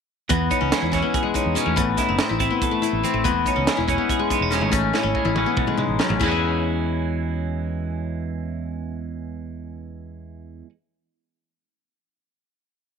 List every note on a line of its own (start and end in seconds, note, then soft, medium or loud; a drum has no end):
0.29 1.77 E2 medium
0.29 0.49 E2 medium
0.29 1.02 B3 medium
0.29 kick loud
0.29 closed hi-hat medium
0.50 0.93 C#4 medium
0.50 0.88 D#4 medium
0.50 kick medium
0.50 closed hi-hat medium
0.61 0.71 C#2 medium
0.61 0.91 C#4 medium
0.72 1.55 G#3 medium
0.72 snare medium
0.72 closed hi-hat medium
0.82 1.01 E2 medium
0.82 1.40 E4 medium
0.92 2.39 E3 medium
0.92 1.55 C#4 medium
0.92 1.35 C#4 soft
0.92 kick medium
0.92 snare soft
0.92 closed hi-hat medium
1.02 1.76 B3 medium
1.14 1.75 G#4 medium
1.14 kick loud
1.14 closed hi-hat medium
1.23 1.82 G#3 medium
1.34 1.75 C#4 medium
1.34 1.97 D#4 medium
1.34 kick medium
1.34 closed hi-hat medium
1.46 1.55 E2 medium
1.55 1.77 B2 medium
1.55 1.77 G#3 medium
1.55 2.15 C#4 medium
1.55 closed hi-hat medium
1.66 1.79 E2 medium
1.66 2.71 A3 medium
1.76 1.96 A1 medium
1.76 3.22 A2 medium
1.76 2.15 B3 medium
1.76 kick loud
1.76 closed hi-hat medium
1.97 2.35 D#4 medium
1.97 2.40 E4 medium
1.97 kick medium
1.97 snare soft
1.97 closed hi-hat medium
2.09 2.18 F#1 medium
2.09 2.39 C4 medium
2.19 3.03 C4 medium
2.19 snare loud
2.19 closed hi-hat medium
2.29 2.49 A1 medium
2.29 2.82 E4 medium
2.40 3.04 E3 medium
2.40 2.56 C4 medium
2.40 2.84 E4 medium
2.40 kick medium
2.40 closed hi-hat medium
2.50 3.09 B3 medium
2.62 3.23 A4 medium
2.62 kick loud
2.62 closed hi-hat medium
2.71 3.13 A3 medium
2.82 3.52 E4 medium
2.82 3.47 E4 medium
2.82 closed hi-hat medium
2.93 3.02 A1 medium
3.03 3.89 E3 medium
3.03 3.30 C4 medium
3.03 3.22 C4 medium
3.03 closed hi-hat medium
3.14 3.25 A1 medium
3.14 4.25 A3 medium
3.24 3.44 E1 medium
3.24 4.72 E2 medium
3.24 3.98 B3 medium
3.24 kick loud
3.24 closed hi-hat medium
3.46 3.89 C#4 medium
3.46 3.83 D#4 medium
3.46 kick medium
3.46 closed hi-hat medium
3.56 3.66 C#2 medium
3.56 3.87 C#4 medium
3.67 4.53 G#3 medium
3.67 snare medium
3.67 closed hi-hat medium
3.77 3.97 E1 medium
3.77 4.36 E4 medium
3.88 5.36 E3 medium
3.88 4.50 C#4 medium
3.88 4.32 C#4 medium
3.88 kick medium
3.88 closed hi-hat medium
3.98 5.46 B3 medium
4.09 4.76 G#4 medium
4.09 kick loud
4.09 closed hi-hat medium
4.19 4.67 G#3 medium
4.30 4.42 B3 medium
4.30 4.99 D#4 medium
4.30 kick medium
4.30 closed hi-hat medium
4.41 4.62 E1 medium
4.41 4.73 C#4 soft
4.51 4.73 B2 medium
4.51 5.15 G#3 medium
4.51 4.71 C#4 medium
4.51 snare soft
4.51 closed hi-hat medium
4.61 4.73 G#1 medium
4.61 5.73 A3 medium
4.72 4.91 A1 medium
4.72 5.56 A2 medium
4.72 5.03 C#4 medium
4.72 kick loud
4.72 closed hi-hat medium
4.93 5.37 C#4 medium
4.93 5.24 E4 medium
4.93 snare medium
5.03 5.14 G#1 medium
5.03 5.35 C#4 medium
5.15 6.25 G#3 medium
5.15 kick medium
5.25 5.44 A1 medium
5.25 5.83 E4 medium
5.25 mid tom medium
5.36 6.22 E3 medium
5.36 5.99 C#4 medium
5.36 6.19 C#4 soft
5.36 mid tom medium
5.46 7.12 B3 medium
5.57 5.78 A2 medium
5.57 kick loud
5.57 mid tom medium
5.67 6.26 G#3 medium
5.67 mid tom medium
5.77 6.00 G#2 medium
5.77 6.26 D#4 medium
5.77 mid tom medium
5.89 5.98 A1 medium
5.99 6.21 F#2 medium
5.99 7.54 C#4 medium
5.99 snare medium
6.09 6.19 A1 medium
6.09 6.29 A3 medium
6.09 floor tom medium
6.20 10.62 E2 medium
6.20 10.66 E2 medium
6.20 10.67 E3 medium
6.20 10.61 E4 medium
6.20 10.67 G#4 medium
6.20 kick loud
6.20 china medium
6.26 10.68 G#3 medium
6.26 10.69 C#4 medium
6.26 10.70 F#4 medium
6.26 10.69 B4 medium
6.32 10.67 E5 medium